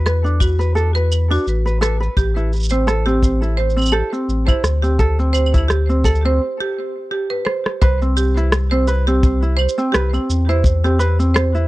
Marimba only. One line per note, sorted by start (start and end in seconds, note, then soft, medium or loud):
0.06 0.17 B4 loud
0.40 0.52 F#4 loud
0.95 1.04 B4 loud
1.31 1.40 F#4 loud
1.82 1.93 B4 medium
2.17 2.28 G4 loud
2.71 2.80 C5 medium
3.06 3.15 G4 loud
3.57 3.69 C5 loud
3.93 4.04 G4 medium
4.47 4.56 C5 loud
4.82 4.92 G4 medium
5.33 5.45 C5 loud
5.68 5.80 G4 loud
6.26 6.34 C5 medium
6.60 6.69 G4 loud
7.11 7.30 G4 medium
7.30 7.39 B4 loud
7.45 7.57 C5 loud
7.82 7.93 C5 loud
8.17 8.28 G4 loud
8.71 8.80 C5 loud
9.07 9.16 G4 loud
9.57 9.69 C5 loud
9.92 10.04 G4 loud
10.49 10.57 C5 loud
10.84 10.93 G4 medium
11.34 11.46 C5 loud